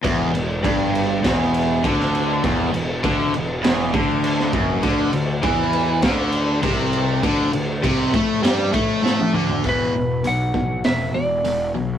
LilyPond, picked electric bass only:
\new Staff \with { instrumentName = "Picked electric bass" } { \clef bass \time 4/4 \key e \minor \tempo 4 = 100 e,,8 e,,8 g,,4 e,,4 d,4 | e,,8 e,,8 d,8 e,,8 e,,8 d,4 fis,,8 | d,8 d,8 e,4 d,4 c,4 | d,8 d,8 c,8 a,8 g,8 a,8 a,8 d,8 |
e,,4 b,,8 b,,8 e,,8 e,,8 e,,8 b,,8 | }